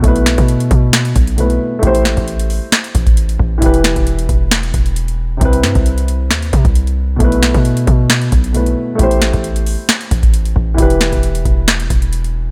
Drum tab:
HH |xxxxxxx-xxxxxx--|xxxxxxo-xxxxxx--|xxxxxxx-xxxxxx--|xxxxxxx-xxxxxx--|
SD |--o-----o-------|--o-----o-------|--o-----o-------|--o-----o-------|
BD |o--o--o---o-----|o--o------oo--o-|o--o--o---o-----|o--o------oo----|

HH |xxxxxxx-xxxxxx--|xxxxxxo-xxxxxx--|xxxxxxx-xxxxxx--|
SD |--o-----o-------|--o-----o-------|--o-----o-------|
BD |o--o--o---o-----|o--o------oo--o-|o--o--o---o-----|